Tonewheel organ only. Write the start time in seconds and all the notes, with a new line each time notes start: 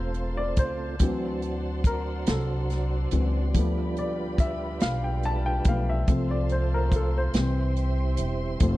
Already playing: A3 C4 F4 C5
0.99 F#3 D4 F#4 C5
3.53 G3 D4 F4 B4
6.08 A3 C4 F4 C5
7.34 G3 C4 E4 C5
8.60 A3 C4 F4 C5